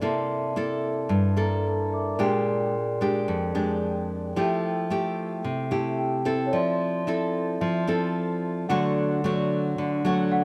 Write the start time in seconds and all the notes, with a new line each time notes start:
0.01 C3 A#3 E4 A4 D5 E5 A5
0.05 C6
0.56 A#3 E4 A4
1.09 G2
1.37 A#3 E4 A4 A#5
1.66 A5
1.90 A#4 D5 E5 A5 D6
2.15 A#2 G#3 A#4 D5 G5
2.20 D4 G4 G#4 C6
3.01 G#3 D4 G4
3.28 F2
3.55 G#3 D4 G4
4.35 F3 A3 E4 G4 A4 E5 G5
4.90 A3 E4 G4
5.44 C3
5.71 A3 E4 G4 A5
5.99 G5
6.25 C4 E4 A4
6.46 C#5
6.51 F3 D5 E5
6.55 C6
7.07 C4 E4 A4
7.61 F3 E5
7.87 C4 E4 A4
8.68 D3 F#3 A3 D4 F#4 A4 D5 F#5
8.72 C6
9.24 F#3 A3 D4 F#4
9.78 D3
10.05 F#3 A3 D4 F#4
10.32 F#5